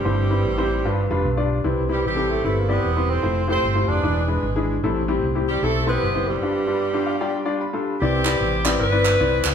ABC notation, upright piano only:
X:1
M:4/4
L:1/16
Q:"Swing" 1/4=151
K:C
V:1 name="Upright piano"
[G,CEc] z [G,CEB]2 z [G,CEc]2 z [G,DFB] z [G,DFB]2 z [G,DFd]2 z | [G,CEB] z [G,CEB]2 z [G,CEA]2 z [G,CEB] z [G,CEd]2 z [G,CEc]2 z | [A,EFc] z [A,EFG]2 z [A,EFG]2 z [^G,DEB] z [G,DEB]2 z [G,DE^G]2 z | [G,CEA] z [G,CEG]2 z [G,CEG]2 z [G,CEA] z [G,CEc]2 z [G,CEc]2 z |
[G,DFB] z [G,DFB]2 z [G,DFG]2 z [G,DFd] z [G,DFd]2 z [G,DFA]2 z | [CEBd] z [CEBd]3 z [CEBd]2 z [CEBd]2 z [CEBd]3 z |]
V:2 name="Upright piano" clef=bass
G,,6 z2 G,,6 z2 | C,6 z8 z2 | z8 E,6 z2 | A,,6 z8 z2 |
G,,6 f2 g4 b4 | C,6 z8 z2 |]